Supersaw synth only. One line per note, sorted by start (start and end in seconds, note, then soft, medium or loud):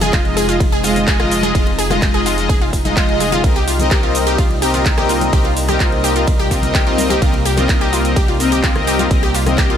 0.02 0.46 G#3 medium
0.02 0.46 F4 medium
0.02 0.46 D#5 medium
0.49 0.60 G#3 medium
0.49 0.60 F4 medium
0.49 0.60 D#5 medium
0.84 1.17 G#3 loud
0.84 1.17 F4 medium
0.84 1.17 D#5 loud
1.20 1.52 G#3 medium
1.20 1.52 F4 medium
1.20 1.52 D#5 loud
1.55 1.66 G#3 medium
1.55 1.66 F4 medium
1.55 1.66 D#5 loud
1.91 2.35 G#3 medium
1.91 2.35 F4 medium
1.91 2.35 D#5 medium
2.38 2.49 G#3 medium
2.38 2.49 F4 medium
2.38 2.49 D#5 medium
2.85 2.94 G#3 medium
2.85 2.94 F4 medium
2.85 2.94 D#5 medium
2.97 3.41 G#3 loud
2.97 3.41 F4 medium
2.97 3.41 D#5 loud
3.44 3.55 C4 medium
3.44 3.55 A#4 medium
3.44 3.55 D#5 loud
3.80 4.24 C4 medium
3.80 4.24 A#4 medium
3.80 4.24 D#5 medium
4.27 4.38 C4 medium
4.27 4.38 A#4 medium
4.27 4.38 D#5 medium
4.62 4.95 C4 medium
4.62 4.95 A#4 medium
4.62 4.95 D#5 loud
4.98 5.30 C4 medium
4.98 5.30 A#4 medium
4.98 5.30 D#5 loud
5.33 5.44 C4 medium
5.33 5.44 A#4 medium
5.33 5.44 D#5 loud
5.69 6.13 C4 medium
5.69 6.13 A#4 medium
5.69 6.13 D#5 medium
6.16 6.27 C4 medium
6.16 6.27 A#4 medium
6.16 6.27 D#5 medium
6.51 6.84 C4 loud
6.51 6.84 A#4 medium
6.51 6.84 D#5 loud
6.87 7.19 C4 medium
6.87 7.19 A#4 medium
6.87 7.19 D#5 loud
7.22 7.33 C4 medium
7.22 7.33 A#4 medium
7.22 7.33 D#5 loud
7.58 8.02 C4 medium
7.58 8.02 A#4 medium
7.58 8.02 D#5 medium
8.05 8.16 C4 medium
8.05 8.16 A#4 medium
8.05 8.16 D#5 medium
8.40 8.73 C4 loud
8.40 8.73 A#4 medium
8.40 8.73 D#5 loud
8.76 9.08 C4 medium
8.76 9.08 A#4 medium
8.76 9.08 D#5 loud
9.11 9.22 C4 medium
9.11 9.22 A#4 medium
9.11 9.22 D#5 loud
9.47 9.77 C4 medium
9.47 9.77 A#4 medium
9.47 9.77 D#5 medium